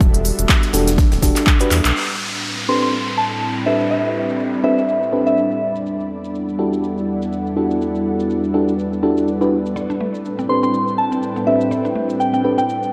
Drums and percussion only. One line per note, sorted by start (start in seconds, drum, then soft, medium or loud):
0.01 kick loud
0.01 closed hi-hat medium
0.01 cabasa soft
0.14 closed hi-hat soft
0.14 closed hi-hat medium
0.25 closed hi-hat medium
0.25 open hi-hat loud
0.25 cabasa medium
0.39 closed hi-hat medium
0.39 cabasa soft
0.49 kick loud
0.49 snare loud
0.49 clap loud
0.49 closed hi-hat medium
0.49 cabasa soft
0.63 snare medium
0.63 closed hi-hat soft
0.73 snare loud
0.73 closed hi-hat medium
0.73 open hi-hat loud
0.73 cabasa medium
0.87 snare medium
0.87 closed hi-hat medium
0.87 cabasa soft
0.98 kick loud
0.98 snare loud
0.98 closed hi-hat medium
0.98 cabasa soft
1.12 snare loud
1.12 closed hi-hat medium
1.22 kick medium
1.22 snare loud
1.22 closed hi-hat medium
1.22 open hi-hat loud
1.22 cabasa medium
1.36 snare medium
1.36 clap soft
1.36 closed hi-hat medium
1.36 cabasa soft
1.47 kick loud
1.47 clap loud
1.47 cabasa soft
1.60 closed hi-hat medium
1.71 clap medium
1.71 closed hi-hat medium
1.71 open hi-hat loud
1.71 cabasa medium
1.85 clap loud
1.85 closed hi-hat medium
1.85 closed hi-hat soft
1.85 cabasa soft
1.96 crash medium
3.32 cabasa medium
3.42 cabasa soft
3.56 cabasa soft
3.81 cabasa medium
3.91 cabasa soft
4.05 cabasa soft
4.29 cabasa medium
4.40 cabasa soft
4.54 cabasa soft
4.78 cabasa medium
4.89 cabasa soft
5.03 cabasa soft
5.27 cabasa medium
5.38 cabasa soft
5.51 cabasa soft
5.76 cabasa medium
5.86 cabasa soft
6.00 cabasa soft
6.24 cabasa medium
6.35 cabasa soft
6.49 cabasa soft
6.73 cabasa medium
6.84 cabasa soft
6.98 cabasa soft
7.22 cabasa medium
7.33 cabasa soft
7.47 cabasa soft
7.71 cabasa medium
7.81 cabasa soft
7.95 cabasa soft
8.20 cabasa medium
8.30 cabasa soft
8.44 cabasa soft
8.68 cabasa medium
8.79 cabasa soft
8.93 cabasa soft
9.17 cabasa medium
9.28 cabasa soft
9.42 cabasa soft
9.66 cabasa medium
9.77 cabasa medium
9.90 cabasa soft
10.15 cabasa medium
10.25 cabasa medium
10.39 cabasa soft
10.63 cabasa medium
10.74 cabasa medium
10.88 cabasa soft
11.12 cabasa medium
11.23 cabasa medium
11.37 cabasa soft
11.61 cabasa medium
11.72 cabasa medium
11.85 cabasa soft
12.10 cabasa medium
12.20 cabasa medium
12.34 cabasa soft
12.59 cabasa medium
12.69 cabasa medium
12.83 cabasa soft